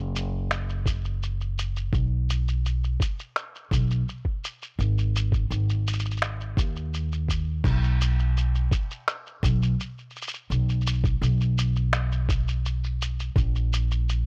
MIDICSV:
0, 0, Header, 1, 3, 480
1, 0, Start_track
1, 0, Tempo, 714286
1, 1298, Time_signature, 4, 2, 24, 8
1, 9583, End_track
2, 0, Start_track
2, 0, Title_t, "Upright bass"
2, 0, Program_c, 0, 32
2, 0, Note_on_c, 0, 30, 91
2, 1262, Note_off_c, 0, 30, 0
2, 1295, Note_on_c, 0, 35, 84
2, 1981, Note_off_c, 0, 35, 0
2, 2495, Note_on_c, 0, 35, 92
2, 2692, Note_off_c, 0, 35, 0
2, 3217, Note_on_c, 0, 32, 93
2, 3662, Note_off_c, 0, 32, 0
2, 3699, Note_on_c, 0, 32, 90
2, 4411, Note_off_c, 0, 32, 0
2, 4416, Note_on_c, 0, 39, 92
2, 5101, Note_off_c, 0, 39, 0
2, 5135, Note_on_c, 0, 35, 91
2, 5821, Note_off_c, 0, 35, 0
2, 6336, Note_on_c, 0, 35, 100
2, 6532, Note_off_c, 0, 35, 0
2, 7056, Note_on_c, 0, 35, 88
2, 7501, Note_off_c, 0, 35, 0
2, 7537, Note_on_c, 0, 35, 90
2, 8942, Note_off_c, 0, 35, 0
2, 8977, Note_on_c, 0, 34, 96
2, 9583, Note_off_c, 0, 34, 0
2, 9583, End_track
3, 0, Start_track
3, 0, Title_t, "Drums"
3, 106, Note_on_c, 9, 82, 68
3, 173, Note_off_c, 9, 82, 0
3, 342, Note_on_c, 9, 26, 68
3, 347, Note_on_c, 9, 82, 41
3, 409, Note_off_c, 9, 26, 0
3, 414, Note_off_c, 9, 82, 0
3, 465, Note_on_c, 9, 82, 28
3, 532, Note_off_c, 9, 82, 0
3, 576, Note_on_c, 9, 36, 92
3, 583, Note_on_c, 9, 82, 70
3, 643, Note_off_c, 9, 36, 0
3, 650, Note_off_c, 9, 82, 0
3, 703, Note_on_c, 9, 82, 30
3, 770, Note_off_c, 9, 82, 0
3, 826, Note_on_c, 9, 82, 43
3, 893, Note_off_c, 9, 82, 0
3, 945, Note_on_c, 9, 82, 27
3, 1013, Note_off_c, 9, 82, 0
3, 1065, Note_on_c, 9, 82, 70
3, 1132, Note_off_c, 9, 82, 0
3, 1184, Note_on_c, 9, 82, 30
3, 1251, Note_off_c, 9, 82, 0
3, 1295, Note_on_c, 9, 36, 105
3, 1302, Note_on_c, 9, 82, 36
3, 1362, Note_off_c, 9, 36, 0
3, 1369, Note_off_c, 9, 82, 0
3, 1544, Note_on_c, 9, 82, 73
3, 1611, Note_off_c, 9, 82, 0
3, 1666, Note_on_c, 9, 82, 32
3, 1733, Note_off_c, 9, 82, 0
3, 1785, Note_on_c, 9, 82, 43
3, 1852, Note_off_c, 9, 82, 0
3, 1907, Note_on_c, 9, 82, 28
3, 1974, Note_off_c, 9, 82, 0
3, 2016, Note_on_c, 9, 36, 95
3, 2027, Note_on_c, 9, 82, 74
3, 2083, Note_off_c, 9, 36, 0
3, 2094, Note_off_c, 9, 82, 0
3, 2145, Note_on_c, 9, 82, 30
3, 2213, Note_off_c, 9, 82, 0
3, 2258, Note_on_c, 9, 26, 67
3, 2263, Note_on_c, 9, 82, 40
3, 2326, Note_off_c, 9, 26, 0
3, 2331, Note_off_c, 9, 82, 0
3, 2387, Note_on_c, 9, 82, 28
3, 2454, Note_off_c, 9, 82, 0
3, 2495, Note_on_c, 9, 36, 92
3, 2506, Note_on_c, 9, 82, 71
3, 2562, Note_off_c, 9, 36, 0
3, 2573, Note_off_c, 9, 82, 0
3, 2625, Note_on_c, 9, 82, 28
3, 2692, Note_off_c, 9, 82, 0
3, 2746, Note_on_c, 9, 82, 39
3, 2813, Note_off_c, 9, 82, 0
3, 2856, Note_on_c, 9, 36, 58
3, 2923, Note_off_c, 9, 36, 0
3, 2986, Note_on_c, 9, 82, 68
3, 3053, Note_off_c, 9, 82, 0
3, 3105, Note_on_c, 9, 82, 31
3, 3173, Note_off_c, 9, 82, 0
3, 3224, Note_on_c, 9, 82, 40
3, 3292, Note_off_c, 9, 82, 0
3, 3347, Note_on_c, 9, 82, 25
3, 3414, Note_off_c, 9, 82, 0
3, 3466, Note_on_c, 9, 82, 75
3, 3533, Note_off_c, 9, 82, 0
3, 3576, Note_on_c, 9, 36, 90
3, 3585, Note_on_c, 9, 82, 32
3, 3643, Note_off_c, 9, 36, 0
3, 3653, Note_off_c, 9, 82, 0
3, 3705, Note_on_c, 9, 82, 44
3, 3772, Note_off_c, 9, 82, 0
3, 3826, Note_on_c, 9, 82, 29
3, 3893, Note_off_c, 9, 82, 0
3, 3947, Note_on_c, 9, 82, 64
3, 3986, Note_off_c, 9, 82, 0
3, 3986, Note_on_c, 9, 82, 53
3, 4027, Note_off_c, 9, 82, 0
3, 4027, Note_on_c, 9, 82, 45
3, 4066, Note_off_c, 9, 82, 0
3, 4066, Note_on_c, 9, 82, 38
3, 4106, Note_off_c, 9, 82, 0
3, 4106, Note_on_c, 9, 82, 27
3, 4145, Note_off_c, 9, 82, 0
3, 4145, Note_on_c, 9, 82, 23
3, 4180, Note_on_c, 9, 26, 76
3, 4185, Note_off_c, 9, 82, 0
3, 4185, Note_on_c, 9, 82, 42
3, 4247, Note_off_c, 9, 26, 0
3, 4252, Note_off_c, 9, 82, 0
3, 4304, Note_on_c, 9, 82, 27
3, 4371, Note_off_c, 9, 82, 0
3, 4416, Note_on_c, 9, 36, 86
3, 4424, Note_on_c, 9, 82, 74
3, 4483, Note_off_c, 9, 36, 0
3, 4491, Note_off_c, 9, 82, 0
3, 4543, Note_on_c, 9, 82, 31
3, 4610, Note_off_c, 9, 82, 0
3, 4663, Note_on_c, 9, 82, 45
3, 4730, Note_off_c, 9, 82, 0
3, 4786, Note_on_c, 9, 82, 29
3, 4853, Note_off_c, 9, 82, 0
3, 4895, Note_on_c, 9, 36, 56
3, 4905, Note_on_c, 9, 82, 71
3, 4963, Note_off_c, 9, 36, 0
3, 4972, Note_off_c, 9, 82, 0
3, 5135, Note_on_c, 9, 36, 121
3, 5142, Note_on_c, 9, 49, 95
3, 5147, Note_on_c, 9, 82, 42
3, 5202, Note_off_c, 9, 36, 0
3, 5209, Note_off_c, 9, 49, 0
3, 5214, Note_off_c, 9, 82, 0
3, 5264, Note_on_c, 9, 82, 22
3, 5331, Note_off_c, 9, 82, 0
3, 5384, Note_on_c, 9, 82, 77
3, 5451, Note_off_c, 9, 82, 0
3, 5504, Note_on_c, 9, 82, 32
3, 5571, Note_off_c, 9, 82, 0
3, 5625, Note_on_c, 9, 82, 46
3, 5692, Note_off_c, 9, 82, 0
3, 5744, Note_on_c, 9, 82, 22
3, 5811, Note_off_c, 9, 82, 0
3, 5856, Note_on_c, 9, 36, 104
3, 5862, Note_on_c, 9, 82, 76
3, 5923, Note_off_c, 9, 36, 0
3, 5929, Note_off_c, 9, 82, 0
3, 5986, Note_on_c, 9, 82, 31
3, 6053, Note_off_c, 9, 82, 0
3, 6100, Note_on_c, 9, 26, 81
3, 6105, Note_on_c, 9, 82, 45
3, 6167, Note_off_c, 9, 26, 0
3, 6172, Note_off_c, 9, 82, 0
3, 6225, Note_on_c, 9, 82, 23
3, 6293, Note_off_c, 9, 82, 0
3, 6337, Note_on_c, 9, 36, 90
3, 6344, Note_on_c, 9, 82, 78
3, 6404, Note_off_c, 9, 36, 0
3, 6411, Note_off_c, 9, 82, 0
3, 6467, Note_on_c, 9, 82, 34
3, 6534, Note_off_c, 9, 82, 0
3, 6587, Note_on_c, 9, 82, 48
3, 6654, Note_off_c, 9, 82, 0
3, 6707, Note_on_c, 9, 82, 10
3, 6774, Note_off_c, 9, 82, 0
3, 6789, Note_on_c, 9, 82, 13
3, 6827, Note_off_c, 9, 82, 0
3, 6827, Note_on_c, 9, 82, 32
3, 6866, Note_off_c, 9, 82, 0
3, 6866, Note_on_c, 9, 82, 45
3, 6904, Note_off_c, 9, 82, 0
3, 6904, Note_on_c, 9, 82, 58
3, 6945, Note_off_c, 9, 82, 0
3, 6945, Note_on_c, 9, 82, 31
3, 7012, Note_off_c, 9, 82, 0
3, 7065, Note_on_c, 9, 82, 44
3, 7132, Note_off_c, 9, 82, 0
3, 7184, Note_on_c, 9, 82, 22
3, 7251, Note_off_c, 9, 82, 0
3, 7264, Note_on_c, 9, 82, 17
3, 7303, Note_off_c, 9, 82, 0
3, 7303, Note_on_c, 9, 82, 82
3, 7344, Note_off_c, 9, 82, 0
3, 7344, Note_on_c, 9, 82, 15
3, 7411, Note_off_c, 9, 82, 0
3, 7418, Note_on_c, 9, 36, 100
3, 7424, Note_on_c, 9, 82, 36
3, 7485, Note_off_c, 9, 36, 0
3, 7491, Note_off_c, 9, 82, 0
3, 7545, Note_on_c, 9, 82, 46
3, 7612, Note_off_c, 9, 82, 0
3, 7665, Note_on_c, 9, 82, 24
3, 7732, Note_off_c, 9, 82, 0
3, 7783, Note_on_c, 9, 82, 77
3, 7850, Note_off_c, 9, 82, 0
3, 7902, Note_on_c, 9, 82, 34
3, 7969, Note_off_c, 9, 82, 0
3, 8016, Note_on_c, 9, 26, 76
3, 8021, Note_on_c, 9, 82, 45
3, 8083, Note_off_c, 9, 26, 0
3, 8088, Note_off_c, 9, 82, 0
3, 8142, Note_on_c, 9, 82, 25
3, 8209, Note_off_c, 9, 82, 0
3, 8257, Note_on_c, 9, 36, 101
3, 8263, Note_on_c, 9, 82, 82
3, 8325, Note_off_c, 9, 36, 0
3, 8331, Note_off_c, 9, 82, 0
3, 8386, Note_on_c, 9, 82, 33
3, 8453, Note_off_c, 9, 82, 0
3, 8505, Note_on_c, 9, 82, 50
3, 8572, Note_off_c, 9, 82, 0
3, 8628, Note_on_c, 9, 82, 22
3, 8695, Note_off_c, 9, 82, 0
3, 8748, Note_on_c, 9, 82, 75
3, 8815, Note_off_c, 9, 82, 0
3, 8868, Note_on_c, 9, 82, 34
3, 8935, Note_off_c, 9, 82, 0
3, 8976, Note_on_c, 9, 36, 116
3, 8989, Note_on_c, 9, 82, 43
3, 9044, Note_off_c, 9, 36, 0
3, 9056, Note_off_c, 9, 82, 0
3, 9107, Note_on_c, 9, 82, 22
3, 9174, Note_off_c, 9, 82, 0
3, 9228, Note_on_c, 9, 82, 82
3, 9295, Note_off_c, 9, 82, 0
3, 9347, Note_on_c, 9, 82, 38
3, 9415, Note_off_c, 9, 82, 0
3, 9469, Note_on_c, 9, 82, 49
3, 9536, Note_off_c, 9, 82, 0
3, 9583, End_track
0, 0, End_of_file